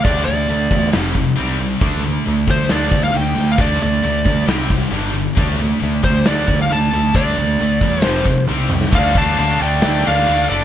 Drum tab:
CC |----------------|----------------|----------------|----------------|
HH |o---o---o---o---|o---o---o---o---|o---o---o---o---|o---o---o---o---|
SD |--------o-------|--------o-----o-|--------o-------|--------o-------|
T1 |----------------|----------------|----------------|----------------|
T2 |----------------|----------------|----------------|----------------|
BD |o-----o---o-----|o-----o---o-----|o-----o---o-----|o-----o---o-----|

CC |----------------|x---------------|
HH |o---o---o-------|----o---o---o---|
SD |--------o------o|--------o--o----|
T1 |------------o---|----------------|
T2 |--------------o-|----------------|
BD |o-----o---o-----|o-o-------------|